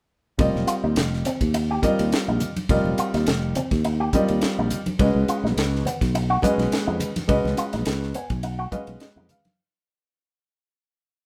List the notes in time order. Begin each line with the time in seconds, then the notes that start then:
0.38 F1 G3 C4 F4 A#4 D#5, kick, ride
0.55 F1, snare, high conga
0.67 F4, muted fretless electric bass stroke, hi-hat pedal, ride
0.84 D#2 D#4
0.96 F1, snare, ride
1.13 snare
1.25 C4, snare, hi-hat pedal, ride, low conga
1.41 D#2, kick, ride
1.54 D#4, ride
1.71 G4
1.82 G3 C4 F4 A#4 D#5, kick, hi-hat pedal, ride, high conga
1.99 D#2, ride
2.12 muted fretless electric bass stroke, snare, ride
2.28 A#1 D#4
2.40 hi-hat pedal, ride, low conga
2.56 muted fretless electric bass stroke, ride, high conga
2.69 F1 G3 C4 F4 A#4 D#5, kick, ride
2.84 F1, high conga
2.98 F4, muted fretless electric bass stroke, hi-hat pedal, ride
3.14 D#2 D#4, snare, ride
3.27 F1, snare, ride
3.55 C4, hi-hat pedal, ride, low conga
3.71 D#2, kick, snare, ride
3.84 D#4, ride
4.00 G4
4.13 G3 C4 F4 A#4 D#5, kick, hi-hat pedal, ride, high conga
4.28 D#2, ride
4.41 muted fretless electric bass stroke, snare, ride
4.59 A#1 D#4
4.70 hi-hat pedal, ride, low conga
4.86 muted fretless electric bass stroke, ride, high conga
4.99 C#2 G#3 C#4 F#4 B4 D#5, kick, ride
5.15 C#2
5.28 F4, muted fretless electric bass stroke, hi-hat pedal, ride
5.44 B1 D#4, snare
5.57 C#2, snare, ride
5.75 snare
5.85 B3, hi-hat pedal, ride, low conga
6.01 B1, kick, snare, ride
6.15 D#4, ride
6.30 F#4
6.42 G#3 C#4 F#4 B4 D#5, muted fretless electric bass stroke, kick, hi-hat pedal, ride, high conga
6.58 B1, snare, ride
6.72 snare, ride
6.87 F2 D#4
7.00 hi-hat pedal, ride, low conga
7.16 muted fretless electric bass stroke, snare, ride, high conga
7.27 C#2 G#3 C#4 F#4 B4 D#5, kick, ride
7.45 C#2, snare, high conga
7.57 F4, muted fretless electric bass stroke, hi-hat pedal, ride
7.73 B1 D#4, snare, ride
7.85 C#2, snare, ride
8.03 snare
8.14 B3 G#5, hi-hat pedal, ride
8.30 B1, kick, ride
8.43 D#4 F#5, ride
8.59 F#4
8.71 G#3 C#4 F#4 B4 D#5 F5, kick, hi-hat pedal, ride, high conga
8.87 B1, ride
9.00 D#5, snare, ride
9.16 F2 D#4, high conga
9.29 F5, hi-hat pedal, ride, low conga
9.45 muted fretless electric bass stroke, snare, ride, high conga